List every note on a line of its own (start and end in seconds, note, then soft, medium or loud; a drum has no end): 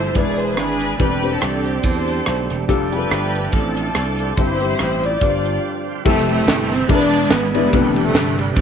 0.00 0.14 F3 medium
0.00 0.15 F3 medium
0.00 0.16 F3 medium
0.00 0.14 G3 medium
0.00 0.15 G3 medium
0.00 0.15 A3 medium
0.00 0.16 A3 medium
0.00 0.12 C4 medium
0.00 0.12 E4 medium
0.00 0.14 E4 medium
0.00 0.15 E4 medium
0.00 0.16 E4 medium
0.00 0.15 G4 medium
0.00 0.17 A4 medium
0.00 0.16 C5 medium
0.15 0.58 E1 medium
0.15 0.99 E3 medium
0.15 0.78 E3 medium
0.15 0.99 E3 medium
0.15 0.85 G#3 medium
0.15 0.99 G#3 medium
0.15 0.99 B3 soft
0.15 4.33 D4 medium
0.15 0.86 D4 medium
0.15 0.99 D4 soft
0.15 0.86 E4 medium
0.15 0.99 G#4 medium
0.15 0.57 G#4 medium
0.15 0.56 B4 medium
0.15 0.86 B4 medium
0.15 0.40 D5 medium
0.15 kick medium
0.15 closed hi-hat medium
0.39 0.58 C5 medium
0.39 closed hi-hat medium
0.57 0.94 G#1 medium
0.57 0.97 D4 medium
0.57 0.97 G#4 medium
0.57 0.99 B4 medium
0.57 cross-stick medium
0.57 closed hi-hat medium
0.80 closed hi-hat medium
0.99 1.36 E1 medium
0.99 2.65 D3 medium
0.99 1.62 E3 medium
0.99 1.17 G3 medium
0.99 5.17 G3 medium
0.99 2.65 A3 medium
0.99 2.66 C4 medium
0.99 1.17 C4 medium
0.99 2.65 C4 soft
0.99 1.17 D4 medium
0.99 1.33 D4 medium
0.99 2.65 G4 medium
0.99 1.65 G4 medium
0.99 1.17 B4 medium
0.99 1.31 B4 medium
0.99 kick medium
0.99 closed hi-hat medium
1.23 1.82 G3 medium
1.23 1.82 C4 medium
1.23 1.82 D4 medium
1.23 1.83 C5 medium
1.23 closed hi-hat medium
1.33 2.14 C4 medium
1.33 2.14 D4 medium
1.33 1.66 A4 medium
1.42 1.78 C2 medium
1.42 cross-stick loud
1.42 closed hi-hat medium
1.66 1.84 G4 medium
1.66 closed hi-hat medium
1.83 2.20 E2 medium
1.83 2.65 G4 medium
1.83 2.65 A4 medium
1.83 2.51 C5 medium
1.83 kick medium
1.83 closed hi-hat medium
2.08 closed hi-hat medium
2.26 2.47 B1 medium
2.26 cross-stick loud
2.26 closed hi-hat medium
2.50 2.66 E1 medium
2.50 cross-stick soft
2.50 closed hi-hat medium
2.68 3.05 F1 medium
2.68 4.34 F3 medium
2.68 4.36 F3 medium
2.68 2.86 G3 medium
2.68 4.34 A3 medium
2.68 4.36 A3 medium
2.68 2.86 D4 medium
2.68 4.34 D4 medium
2.68 2.86 F4 medium
2.68 2.75 F#4 medium
2.68 2.86 A4 medium
2.68 kick medium
2.68 closed hi-hat medium
2.75 4.37 G4 medium
2.92 3.51 G3 medium
2.92 3.51 D4 medium
2.92 3.52 D4 medium
2.92 3.51 F4 medium
2.92 3.73 G4 medium
2.92 2.97 G#4 medium
2.92 3.49 B4 medium
2.92 closed hi-hat medium
2.98 3.54 A4 medium
3.11 3.47 G1 medium
3.11 cross-stick loud
3.11 closed hi-hat medium
3.35 closed hi-hat medium
3.52 3.89 A1 medium
3.52 4.34 C4 medium
3.52 4.34 D4 medium
3.52 4.37 A4 medium
3.52 kick loud
3.52 closed hi-hat medium
3.77 closed hi-hat medium
3.95 4.31 C2 medium
3.95 cross-stick loud
3.95 closed hi-hat medium
4.19 closed hi-hat medium
4.37 4.73 G1 medium
4.37 4.99 G2 medium
4.37 5.20 E3 medium
4.37 5.21 E3 medium
4.37 4.55 G3 medium
4.37 5.20 G3 medium
4.37 4.55 C4 medium
4.37 5.20 C4 soft
4.37 6.04 C4 medium
4.37 4.55 E4 medium
4.37 5.21 E4 medium
4.37 5.18 E4 medium
4.37 5.18 G4 medium
4.37 5.20 G4 medium
4.37 5.04 C5 medium
4.37 4.55 C5 medium
4.37 kick medium
4.37 closed hi-hat medium
4.60 5.19 G3 medium
4.60 5.20 C4 medium
4.60 5.20 E4 medium
4.60 5.20 C5 medium
4.60 closed hi-hat medium
4.79 5.15 A1 medium
4.79 cross-stick medium
4.79 closed hi-hat medium
5.03 5.84 F4 medium
5.03 5.88 D5 medium
5.03 closed hi-hat medium
5.21 5.57 G1 medium
5.21 5.84 G2 medium
5.21 6.04 D3 medium
5.21 6.05 F3 medium
5.21 5.91 G3 medium
5.21 6.04 G3 soft
5.21 6.05 G3 medium
5.21 6.04 C4 soft
5.21 5.91 D4 medium
5.21 6.05 D4 medium
5.21 6.04 F4 medium
5.21 5.91 F4 medium
5.21 5.28 B4 medium
5.21 kick medium
5.21 closed hi-hat medium
5.28 5.94 C5 medium
5.46 closed hi-hat medium
6.05 6.41 F1 loud
6.05 6.29 C3 medium
6.05 6.29 E3 medium
6.05 6.88 E3 medium
6.05 6.68 G3 medium
6.05 6.88 A3 medium
6.05 6.28 A3 loud
6.05 6.68 C4 medium
6.05 6.88 C4 medium
6.05 6.69 E4 medium
6.05 6.88 E4 medium
6.05 6.12 F#4 medium
6.05 6.69 G4 medium
6.05 6.69 A4 medium
6.05 kick loud
6.05 crash loud
6.05 tambourine medium
6.11 6.91 G4 medium
6.29 6.86 C3 medium
6.29 6.86 E3 medium
6.29 6.69 A3 loud
6.29 ride medium
6.29 tambourine medium
6.47 6.83 G1 medium
6.47 snare loud
6.47 clap medium
6.47 ride medium
6.47 tambourine medium
6.71 6.89 C4 loud
6.71 snare soft
6.71 ride medium
6.71 tambourine medium
6.88 7.25 E1 loud
6.88 7.51 E3 medium
6.88 7.72 E3 medium
6.88 7.40 G#3 medium
6.88 7.71 G#3 medium
6.88 7.70 G#3 medium
6.88 7.40 B3 medium
6.88 7.72 B3 medium
6.88 7.30 B3 medium
6.88 7.40 D4 medium
6.88 7.71 D4 medium
6.88 7.31 D4 loud
6.88 7.41 E4 medium
6.88 7.72 G#4 medium
6.88 6.95 A#4 medium
6.88 kick loud
6.88 ride medium
6.88 tambourine medium
6.95 7.43 B4 medium
7.12 ride medium
7.12 tambourine soft
7.31 7.66 G#1 medium
7.31 7.54 B3 loud
7.31 snare loud
7.31 clap loud
7.31 ride medium
7.31 tambourine medium
7.54 8.06 D3 medium
7.54 8.34 G3 medium
7.54 7.68 G#3 medium
7.54 7.68 B3 medium
7.54 8.02 B3 loud
7.54 7.68 D4 medium
7.54 7.68 E4 medium
7.54 7.68 D5 medium
7.54 ride medium
7.54 tambourine medium
7.73 8.08 E1 loud
7.73 8.61 C3 medium
7.73 8.61 D3 medium
7.73 8.35 E3 medium
7.73 8.36 A3 medium
7.73 8.61 A3 medium
7.73 7.79 B3 medium
7.73 8.36 D4 medium
7.73 8.61 G4 medium
7.73 8.37 G4 medium
7.73 8.61 B4 medium
7.73 8.37 B4 loud
7.73 kick loud
7.73 ride medium
7.73 tambourine loud
7.78 8.39 C3 medium
7.96 ride medium
7.96 tambourine medium
8.07 8.61 C3 medium
8.07 8.61 D3 medium
8.07 8.39 A3 loud
8.14 8.50 G1 loud
8.14 snare loud
8.14 clap loud
8.14 ride medium
8.14 tambourine medium
8.39 8.56 G3 medium
8.39 ride medium
8.39 tambourine medium
8.56 8.61 A1 loud
8.56 8.61 G3 medium
8.56 8.61 A3 medium
8.56 8.61 C4 loud
8.56 kick loud
8.56 ride medium
8.56 tambourine medium